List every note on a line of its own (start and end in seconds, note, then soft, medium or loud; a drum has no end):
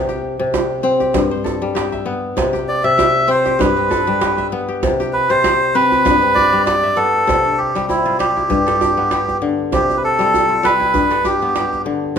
0.00 0.38 C3 medium
0.00 0.30 A4 medium
0.00 0.49 E5 medium
0.09 0.53 G4 medium
0.09 djembe tone medium
0.39 1.19 C3 medium
0.54 1.00 G4 medium
0.54 djembe slap medium
0.54 djembe tone medium
0.70 djembe slap soft
0.83 2.12 C4 medium
1.00 1.75 G4 medium
1.00 djembe slap soft
1.00 djembe tone soft
1.14 2.41 G2 medium
1.14 djembe slap medium
1.14 djembe bass medium
1.31 2.12 C5 medium
1.44 2.76 A4 medium
1.44 djembe tone medium
1.62 2.41 G3 medium
1.75 2.53 G4 medium
1.75 djembe slap medium
1.92 2.96 E5 medium
1.92 djembe slap soft
1.92 djembe tone soft
2.06 2.43 B3 medium
2.37 2.83 C3 medium
2.37 djembe slap medium
2.37 djembe bass medium
2.53 2.97 G4 medium
2.53 djembe tone medium
2.68 2.83 D5 medium
2.84 3.64 C3 medium
2.84 3.30 E5 loud
2.98 3.45 G4 medium
2.98 djembe slap medium
2.98 djembe tone medium
3.15 djembe slap soft
3.28 3.76 C4 medium
3.28 3.61 C5 medium
3.45 4.21 G4 medium
3.45 djembe slap soft
3.45 djembe tone medium
3.59 4.87 G2 medium
3.59 4.47 B4 medium
3.59 djembe slap medium
3.59 djembe bass medium
3.77 4.58 C4 medium
3.91 5.22 A4 medium
3.91 djembe tone medium
4.07 4.87 G3 medium
4.21 4.68 G4 medium
4.21 djembe slap medium
4.38 5.41 E5 medium
4.38 djembe slap soft
4.38 djembe tone medium
4.52 4.89 B3 medium
4.68 5.00 G4 medium
4.83 5.29 C3 medium
4.83 djembe slap medium
4.83 djembe bass medium
5.00 5.44 G4 medium
5.00 djembe tone medium
5.13 5.30 B4 medium
5.13 djembe slap soft
5.30 6.09 C3 medium
5.30 5.76 C5 loud
5.44 5.92 G4 medium
5.44 djembe slap medium
5.44 djembe tone medium
5.61 djembe slap soft
5.75 6.22 C4 medium
5.75 6.62 B4 medium
5.92 6.66 G4 soft
5.92 djembe tone medium
6.05 7.32 G2 medium
6.05 djembe slap medium
6.05 djembe bass medium
6.22 7.03 C4 medium
6.22 djembe slap soft
6.35 6.65 D5 medium
6.35 djembe tone medium
6.52 7.32 G3 medium
6.52 djembe slap soft
6.66 8.08 G4 medium
6.66 6.97 D5 medium
6.66 djembe slap medium
6.83 7.87 E5 medium
6.96 7.33 B3 medium
6.96 7.60 A4 medium
6.96 djembe slap soft
7.14 djembe slap soft
7.27 8.55 C3 medium
7.27 djembe slap medium
7.27 djembe bass medium
7.45 9.13 D4 medium
7.58 7.86 G4 medium
7.75 8.18 G3 medium
7.75 djembe slap medium
7.89 9.03 C4 medium
7.89 8.17 E4 medium
7.89 djembe tone medium
8.06 9.57 F4 medium
8.19 8.55 G3 medium
8.19 9.38 G4 medium
8.19 djembe slap medium
8.36 9.93 E4 medium
8.36 djembe tone soft
8.50 9.77 G2 medium
8.50 djembe slap soft
8.50 djembe bass medium
8.67 9.98 A4 medium
8.67 djembe slap medium
8.81 9.12 G4 medium
8.81 djembe tone medium
8.97 9.78 B3 medium
9.11 10.53 G4 medium
9.11 djembe slap medium
9.29 djembe slap soft
9.29 djembe tone medium
9.42 9.77 D3 medium
9.59 djembe slap soft
9.72 10.99 C3 medium
9.72 9.98 G4 medium
9.72 djembe slap medium
9.72 djembe bass medium
9.90 djembe tone soft
9.97 10.03 B4 medium
10.04 10.66 A4 medium
10.19 10.62 G3 medium
10.19 djembe slap medium
10.34 djembe tone medium
10.49 12.00 F4 medium
10.63 10.99 G3 medium
10.63 11.27 B4 medium
10.63 djembe slap medium
10.80 12.19 E4 medium
10.80 djembe tone soft
10.94 12.19 G2 medium
10.94 djembe slap soft
10.94 djembe bass medium
11.11 12.19 A4 medium
11.11 djembe slap medium
11.25 11.55 G4 medium
11.25 11.82 G4 medium
11.25 djembe tone medium
11.42 12.19 B3 medium
11.56 12.19 G4 medium
11.56 djembe slap medium
11.73 djembe slap soft
11.73 djembe tone soft
11.86 12.19 D3 medium
12.03 djembe slap soft